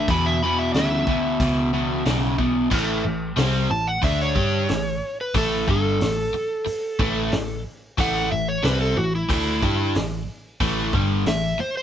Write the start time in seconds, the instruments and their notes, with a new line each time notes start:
0.08 picked electric bass E2, overdriven electric guitar E2 B2, electric slide guitar B5, kick, open hi-hat
0.26 electric slide guitar E5
0.43 overdriven electric guitar E2 B2, electric slide guitar B5
0.59 electric slide guitar E5
0.74 picked electric bass D2, overdriven electric guitar E2 C#3, electric slide guitar E5, snare, open hi-hat
1.07 overdriven electric guitar E2 B2, kick
1.40 picked electric bass C#2, overdriven electric guitar E2 B2, kick, open hi-hat
1.73 overdriven electric guitar E2 B2
2.06 picked electric bass B1, overdriven electric guitar E2 C#3, snare, open hi-hat
2.38 overdriven electric guitar E2 B2, kick
2.70 picked electric bass A1, overdriven electric guitar A2 E3 A3, kick, crash
3.03 picked electric bass A1, overdriven electric guitar A2 E3
3.36 picked electric bass C2, overdriven electric guitar C3 G3 C4, snare, open hi-hat
3.70 picked electric bass A1, overdriven electric guitar A2 E3, electric slide guitar A5
3.87 electric slide guitar F#5
4.02 picked electric bass D2, overdriven electric guitar D3 A3 D4, electric slide guitar E5, kick, open hi-hat
4.21 electric slide guitar C#5
4.35 picked electric bass G2, overdriven electric guitar G3 D4 G4, kick
4.69 picked electric bass A1, overdriven electric guitar A2 E3, snare, open hi-hat
5.21 electric slide guitar B4
5.34 picked electric bass A1, overdriven electric guitar A2 E3 A3, electric slide guitar A4, kick, open hi-hat
5.68 picked electric bass G1, overdriven electric guitar G2 D3 G3, electric slide guitar A4, kick
6.00 picked electric bass A1, overdriven electric guitar A2 E3, snare, open hi-hat
6.34 muted overdriven electric guitar stroke, muted picked electric bass stroke
6.66 muted overdriven electric guitar stroke, muted picked electric bass stroke, open hi-hat
6.99 picked electric bass A1, overdriven electric guitar A2 E3 A3, kick
7.32 picked electric bass A1, overdriven electric guitar A2 E3, snare, open hi-hat
7.98 picked electric bass A1, overdriven electric guitar A2 E3 A3, electric slide guitar F#5, kick, open hi-hat
8.31 picked electric bass A1, overdriven electric guitar A2 E3, electric slide guitar E5
8.48 electric slide guitar C#5
8.63 picked electric bass C2, overdriven electric guitar C3 G3 C4, electric slide guitar B4, snare, open hi-hat
8.81 electric slide guitar A4
8.97 picked electric bass A1, overdriven electric guitar A2 E3, electric slide guitar F#4
9.15 electric slide guitar E4
9.29 picked electric bass D2, overdriven electric guitar D3 A3 D4, kick, open hi-hat
9.34 electric slide guitar E4
9.62 picked electric bass G2, overdriven electric guitar G3 D4 G4, kick
9.95 picked electric bass A1, overdriven electric guitar A2 E3, snare, open hi-hat
10.60 picked electric bass A1, overdriven electric guitar A2 E3 A3, kick, open hi-hat
10.93 picked electric bass G1, overdriven electric guitar G2 D3 G3, kick
11.26 picked electric bass A1, overdriven electric guitar A2 E3, electric slide guitar E5, snare, open hi-hat
11.60 electric slide guitar C5, muted overdriven electric guitar stroke, muted picked electric bass stroke
11.77 electric slide guitar C5